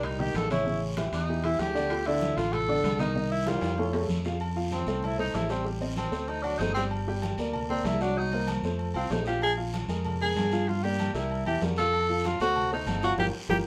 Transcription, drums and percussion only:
0.03 high conga soft
0.03 low conga medium
0.03 high timbale loud
0.03 long guiro medium
0.20 high conga soft
0.34 high conga medium
0.34 high timbale medium
0.34 low timbale medium
0.34 short guiro medium
0.50 high conga medium
0.50 high timbale medium
0.50 short guiro medium
0.66 high conga soft
0.66 long guiro medium
0.82 high conga soft
0.97 high conga loud
0.97 high timbale loud
0.97 low timbale medium
0.97 short guiro medium
1.13 high conga soft
1.13 high timbale medium
1.13 short guiro medium
1.28 high conga soft
1.28 long guiro medium
1.44 high conga soft
1.44 high timbale medium
1.59 high conga medium
1.59 low timbale medium
1.59 short guiro medium
1.75 high conga soft
1.75 short guiro medium
1.90 high conga soft
1.90 high timbale loud
1.90 long guiro medium
2.06 high conga soft
2.06 high timbale medium
2.21 high conga loud
2.21 low timbale medium
2.21 short guiro medium
2.37 high conga soft
2.37 high timbale medium
2.37 short guiro medium
2.53 high conga soft
2.53 low conga medium
2.53 high timbale loud
2.53 long guiro medium
2.68 high conga soft
2.68 low conga medium
2.84 high conga medium
2.84 high timbale medium
2.84 low timbale medium
2.84 short guiro medium
2.99 high timbale medium
2.99 short guiro medium
3.16 long guiro medium
3.46 high conga loud
3.46 high timbale loud
3.46 short guiro medium
3.61 high conga soft
3.61 high timbale loud
3.61 short guiro medium
3.78 high timbale medium
3.78 long guiro medium
3.93 high conga soft
3.93 low timbale loud
4.09 high conga medium
4.09 short guiro medium
4.25 high conga soft
4.25 low timbale medium
4.25 short guiro medium
4.40 low agogo loud
4.40 long guiro medium
4.56 high conga soft
4.71 high conga loud
4.71 low timbale medium
4.71 low agogo medium
4.71 short guiro medium
4.87 high conga soft
4.87 low agogo medium
4.87 short guiro medium
5.03 high conga soft
5.03 low conga medium
5.03 low agogo loud
5.03 long guiro medium
5.19 high conga soft
5.19 low conga medium
5.34 high conga medium
5.34 low timbale medium
5.34 low agogo medium
5.34 short guiro medium
5.49 low agogo medium
5.49 short guiro medium
5.64 high conga soft
5.64 long guiro medium
5.81 high conga soft
5.81 low agogo medium
5.96 high conga loud
5.96 low timbale medium
5.96 low agogo loud
5.96 short guiro medium
6.12 short guiro medium
6.28 high conga soft
6.28 low agogo medium
6.28 long guiro medium
6.44 high conga soft
6.44 low agogo loud
6.59 high conga medium
6.59 low timbale medium
6.59 short guiro medium
6.75 high conga soft
6.75 low agogo medium
6.75 short guiro medium
6.91 high conga soft
6.91 low agogo loud
6.91 long guiro medium
7.07 high conga soft
7.22 high conga loud
7.22 low timbale medium
7.22 low agogo medium
7.22 short guiro medium
7.38 high conga soft
7.38 low agogo medium
7.38 short guiro medium
7.53 high conga soft
7.53 low conga medium
7.53 low agogo loud
7.53 long guiro medium
7.70 high conga soft
7.70 low conga medium
7.85 high conga medium
7.85 low timbale medium
7.85 low agogo loud
7.85 short guiro medium
8.01 low agogo medium
8.01 short guiro medium
8.16 high conga soft
8.16 long guiro medium
8.32 high conga soft
8.32 low agogo medium
8.47 high conga loud
8.47 low timbale medium
8.47 low agogo loud
8.47 short guiro medium
8.64 high conga soft
8.64 short guiro medium
8.79 high conga soft
8.79 low agogo medium
8.79 long guiro medium
8.94 high conga soft
8.94 low agogo loud
9.10 high conga medium
9.10 low timbale medium
9.10 short guiro medium
9.26 low agogo medium
9.26 short guiro medium
9.42 high conga soft
9.42 low agogo loud
9.42 long guiro medium
9.58 high conga soft
9.73 high conga loud
9.73 low timbale medium
9.73 low agogo medium
9.73 short guiro medium
9.89 high conga soft
9.89 low agogo medium
9.89 short guiro medium
10.05 high conga soft
10.05 low conga medium
10.05 low agogo loud
10.05 long guiro medium
10.21 high conga soft
10.36 high conga medium
10.36 low timbale medium
10.36 low agogo loud
10.36 short guiro medium
10.52 low agogo medium
10.52 short guiro medium
10.67 high conga soft
10.67 long guiro medium
10.84 low agogo medium
10.99 high conga medium
10.99 low timbale medium
10.99 low agogo loud
10.99 short guiro medium
11.15 high conga soft
11.15 short guiro medium
11.30 high conga soft
11.30 low agogo medium
11.30 long guiro medium
11.46 high conga soft
11.46 low agogo loud
11.61 high conga medium
11.61 low timbale medium
11.61 short guiro medium
11.76 low agogo medium
11.76 short guiro medium
11.93 high conga soft
11.93 low agogo loud
11.93 long guiro medium
12.24 high conga loud
12.24 low timbale medium
12.24 low agogo medium
12.24 short guiro medium
12.40 high conga soft
12.40 low agogo medium
12.40 short guiro medium
12.56 high conga soft
12.56 low conga medium
12.56 low agogo loud
12.56 long guiro medium
12.72 high conga soft
12.87 high conga medium
12.87 low timbale medium
12.87 low agogo loud
12.87 short guiro medium
13.02 high conga medium
13.02 low agogo medium
13.02 short guiro medium
13.18 high conga loud
13.18 high timbale loud
13.18 long guiro loud
13.49 high conga loud
13.49 high timbale loud
13.49 long guiro loud

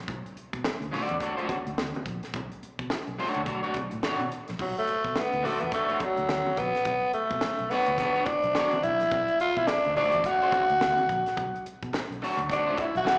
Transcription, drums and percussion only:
0.08 kick loud
0.08 closed hi-hat medium
0.08 muted conga medium
0.26 closed hi-hat soft
0.37 closed hi-hat medium
0.53 kick medium
0.53 closed hi-hat soft
0.64 snare loud
0.64 high conga medium
0.82 closed hi-hat soft
0.94 open hi-hat medium
0.94 muted conga soft
0.94 low conga medium
1.09 closed hi-hat medium
1.20 kick medium
1.20 closed hi-hat medium
1.38 closed hi-hat soft
1.49 kick medium
1.49 closed hi-hat medium
1.49 muted conga medium
1.67 closed hi-hat soft
1.78 snare loud
1.78 high conga medium
1.94 closed hi-hat soft
1.94 high conga medium
2.06 kick medium
2.06 closed hi-hat medium
2.23 snare soft
2.23 closed hi-hat medium
2.34 kick loud
2.34 closed hi-hat medium
2.34 muted conga medium
2.52 closed hi-hat soft
2.63 closed hi-hat medium
2.79 kick loud
2.79 closed hi-hat soft
2.90 snare loud
2.90 high conga medium
3.07 closed hi-hat soft
3.19 open hi-hat medium
3.19 muted conga soft
3.34 closed hi-hat medium
3.46 kick loud
3.46 closed hi-hat medium
3.64 closed hi-hat soft
3.74 kick medium
3.74 closed hi-hat medium
3.74 muted conga medium
3.91 closed hi-hat medium
4.03 snare loud
4.03 high conga medium
4.20 closed hi-hat soft
4.20 high conga medium
4.32 closed hi-hat medium
4.48 snare soft
4.48 closed hi-hat soft
4.59 kick loud
4.59 crash loud
4.59 muted conga medium
4.77 closed hi-hat soft
4.87 closed hi-hat medium
5.04 kick medium
5.04 closed hi-hat soft
5.16 snare loud
5.16 high conga medium
5.33 closed hi-hat soft
5.44 open hi-hat medium
5.44 low conga medium
5.61 closed hi-hat medium
5.72 kick loud
5.72 closed hi-hat medium
5.89 closed hi-hat soft
6.00 kick medium
6.00 closed hi-hat medium
6.00 muted conga medium
6.17 closed hi-hat soft
6.29 snare loud
6.29 high conga medium
6.46 high conga medium
6.57 kick medium
6.57 closed hi-hat medium
6.75 snare soft
6.75 closed hi-hat soft
6.85 kick loud
6.85 closed hi-hat medium
6.85 muted conga medium
7.13 closed hi-hat medium
7.30 kick medium
7.30 closed hi-hat soft
7.41 snare loud
7.41 high conga medium
7.59 closed hi-hat soft
7.71 open hi-hat medium
7.71 muted conga soft
7.86 closed hi-hat medium
7.98 kick loud
7.98 closed hi-hat loud
7.98 low conga medium
8.15 closed hi-hat soft
8.26 kick loud
8.26 closed hi-hat medium
8.26 muted conga medium
8.43 closed hi-hat soft
8.55 snare loud
8.55 high conga medium
8.71 closed hi-hat soft
8.71 high conga medium
8.83 closed hi-hat medium
9.00 snare soft
9.00 closed hi-hat soft
9.11 kick loud
9.11 closed hi-hat medium
9.11 muted conga medium
9.28 closed hi-hat soft
9.40 closed hi-hat medium
9.56 kick medium
9.56 closed hi-hat soft
9.67 snare loud
9.67 high conga medium
9.84 closed hi-hat soft
9.96 open hi-hat medium
9.96 low conga loud
10.12 closed hi-hat medium
10.24 kick loud
10.24 closed hi-hat medium
10.42 closed hi-hat soft
10.52 kick loud
10.52 closed hi-hat medium
10.52 muted conga medium
10.69 closed hi-hat soft
10.81 snare loud
10.81 high conga medium
10.98 closed hi-hat soft
10.98 high conga medium
11.09 kick medium
11.09 closed hi-hat medium
11.26 snare soft
11.26 closed hi-hat soft
11.37 kick loud
11.37 closed hi-hat medium
11.37 muted conga medium
11.56 closed hi-hat soft
11.66 closed hi-hat medium
11.83 kick medium
11.83 closed hi-hat soft
11.93 snare loud
11.93 high conga medium
12.12 closed hi-hat soft
12.22 open hi-hat medium
12.22 muted conga soft
12.39 closed hi-hat medium
12.50 kick loud
12.50 closed hi-hat medium
12.50 low conga medium
12.77 kick loud
12.77 closed hi-hat medium
12.77 muted conga medium
12.96 closed hi-hat soft
13.05 snare loud
13.05 high conga medium

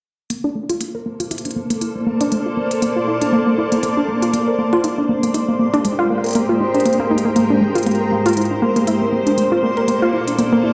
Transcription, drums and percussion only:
0.30 closed hi-hat medium
0.69 closed hi-hat medium
0.81 closed hi-hat medium
1.20 closed hi-hat medium
1.31 closed hi-hat medium
1.38 closed hi-hat soft
1.45 closed hi-hat soft
1.51 closed hi-hat soft
1.70 closed hi-hat medium
1.81 closed hi-hat medium
2.21 closed hi-hat medium
2.32 closed hi-hat medium
2.71 closed hi-hat medium
2.82 closed hi-hat medium
3.22 closed hi-hat medium
3.72 closed hi-hat medium
3.83 closed hi-hat medium
4.22 closed hi-hat medium
4.34 closed hi-hat medium
4.73 closed hi-hat medium
4.84 closed hi-hat medium
5.23 closed hi-hat medium
5.34 closed hi-hat medium
5.74 closed hi-hat medium
5.85 closed hi-hat medium
6.24 closed hi-hat soft
6.26 closed hi-hat soft
6.29 closed hi-hat soft
6.31 closed hi-hat soft
6.33 closed hi-hat soft
6.35 closed hi-hat medium
6.74 closed hi-hat soft
6.80 closed hi-hat soft
6.86 closed hi-hat medium
6.93 closed hi-hat soft
7.18 closed hi-hat soft
7.36 closed hi-hat medium
7.75 closed hi-hat soft
7.78 closed hi-hat soft
7.83 closed hi-hat soft
7.87 closed hi-hat medium
7.91 closed hi-hat soft
7.95 closed hi-hat soft
8.26 closed hi-hat soft
8.28 closed hi-hat soft
8.33 closed hi-hat soft
8.37 closed hi-hat medium
8.42 closed hi-hat soft
8.45 closed hi-hat soft
8.76 closed hi-hat soft
8.87 closed hi-hat medium
9.27 closed hi-hat soft
9.38 closed hi-hat medium
9.77 closed hi-hat soft
9.88 closed hi-hat medium
10.28 closed hi-hat soft
10.39 closed hi-hat medium

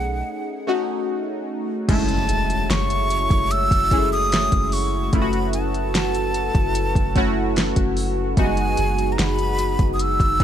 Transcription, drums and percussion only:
1.89 kick loud
1.89 closed hi-hat medium
1.89 crash loud
2.09 closed hi-hat soft
2.29 closed hi-hat medium
2.50 closed hi-hat soft
2.70 snare loud
2.70 closed hi-hat medium
2.90 closed hi-hat soft
3.10 closed hi-hat medium
3.30 kick loud
3.30 closed hi-hat medium
3.51 closed hi-hat medium
3.71 kick medium
3.71 closed hi-hat medium
3.91 kick medium
3.91 closed hi-hat medium
4.32 snare loud
4.32 closed hi-hat medium
4.52 kick medium
4.52 closed hi-hat medium
4.72 open hi-hat medium
5.13 kick loud
5.13 closed hi-hat medium
5.33 closed hi-hat soft
5.53 closed hi-hat medium
5.74 closed hi-hat soft
5.95 snare loud
5.95 closed hi-hat medium
6.15 closed hi-hat soft
6.34 closed hi-hat medium
6.55 kick loud
6.55 closed hi-hat medium
6.75 closed hi-hat medium
6.95 kick medium
6.95 closed hi-hat medium
7.16 kick medium
7.16 closed hi-hat soft
7.56 snare loud
7.56 closed hi-hat medium
7.76 kick medium
7.76 closed hi-hat medium
7.97 open hi-hat medium
8.37 kick loud
8.37 closed hi-hat medium
8.57 closed hi-hat medium
8.77 closed hi-hat medium
8.99 closed hi-hat soft
9.19 snare loud
9.19 closed hi-hat medium
9.39 closed hi-hat soft
9.59 closed hi-hat medium
9.79 kick loud
9.79 closed hi-hat medium
9.99 closed hi-hat medium
10.20 kick medium
10.20 closed hi-hat medium
10.40 kick medium
10.40 closed hi-hat soft

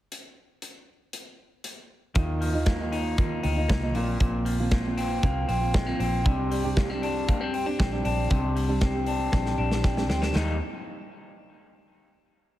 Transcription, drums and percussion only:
0.12 closed hi-hat medium
0.62 closed hi-hat soft
1.13 closed hi-hat medium
1.64 closed hi-hat medium
2.15 kick loud
2.15 closed hi-hat medium
2.42 open hi-hat medium
2.66 kick loud
2.66 snare medium
2.66 closed hi-hat medium
2.93 open hi-hat medium
3.18 kick loud
3.18 closed hi-hat medium
3.44 open hi-hat medium
3.69 kick loud
3.69 snare loud
3.69 closed hi-hat medium
3.95 open hi-hat medium
4.20 kick loud
4.20 closed hi-hat medium
4.46 open hi-hat medium
4.71 kick loud
4.71 snare medium
4.71 closed hi-hat medium
4.98 open hi-hat medium
5.23 kick loud
5.23 closed hi-hat medium
5.49 open hi-hat medium
5.74 kick loud
5.74 snare loud
5.74 closed hi-hat medium
6.00 open hi-hat medium
6.26 kick loud
6.26 closed hi-hat medium
6.52 open hi-hat medium
6.77 kick loud
6.77 snare loud
6.77 closed hi-hat medium
7.03 open hi-hat medium
7.29 kick medium
7.29 closed hi-hat medium
7.54 open hi-hat medium
7.80 kick loud
7.80 snare medium
7.80 closed hi-hat medium
8.05 open hi-hat medium
8.30 kick loud
8.30 closed hi-hat medium
8.57 open hi-hat medium
8.81 kick medium
8.81 snare loud
8.81 closed hi-hat medium
9.06 open hi-hat medium
9.32 kick medium
9.32 snare soft
9.46 snare soft
9.71 snare medium
9.84 kick loud
9.84 snare medium
9.97 snare medium
10.10 snare medium
10.23 snare medium
10.36 snare medium

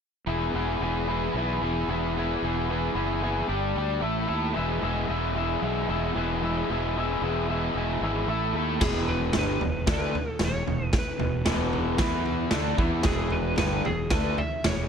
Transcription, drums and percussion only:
8.81 kick medium
8.81 snare loud
8.81 floor tom medium
8.81 crash loud
9.08 floor tom medium
9.33 snare loud
9.33 floor tom medium
9.61 floor tom medium
9.87 kick loud
9.87 snare loud
9.87 floor tom medium
10.15 floor tom medium
10.39 snare loud
10.39 floor tom medium
10.68 floor tom medium
10.93 kick loud
10.93 snare medium
10.93 floor tom medium
11.20 floor tom medium
11.46 snare loud
11.46 floor tom medium
11.73 floor tom medium
11.98 kick loud
11.98 snare loud
11.98 floor tom medium
12.26 floor tom medium
12.51 snare loud
12.51 floor tom medium
12.78 kick medium
12.78 floor tom medium
13.03 kick medium
13.03 snare loud
13.03 floor tom medium
13.30 floor tom medium
13.58 snare loud
13.58 floor tom medium
13.85 floor tom medium
14.10 kick loud
14.10 snare loud
14.10 floor tom medium
14.38 floor tom medium
14.64 snare loud
14.64 floor tom medium

